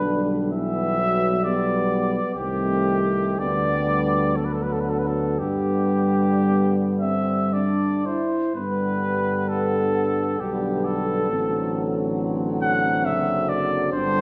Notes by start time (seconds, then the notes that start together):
Already playing: B1 D3 D4 B4
0.04 G3
0.53 E3 B3 E5
0.99 F#3
1.43 G3 B3 D5
2.34 C2 D#3 A3 C4 G4
3.39 D2 D3 G3 B3 D5
4.36 D3 F#3 B3 A4
4.45 B4
4.53 A4
4.63 B4
4.72 A4
4.80 B4
4.89 A4
4.99 B4
5.07 A4
5.39 G2 D3 G3 B3 G4
6.48 B3
7.00 C4 E5
7.53 D4 D5
8.05 E4 C5
8.54 G2 D3 G3 B3 B4
9.48 A4
10.39 B1 D3 G3 B3 G4
10.85 A4
11.30 A1 D3 F#3 C4
12.62 F#5
13.05 F#1 E5
13.49 D5
13.92 G1 D3 G3 D4 C5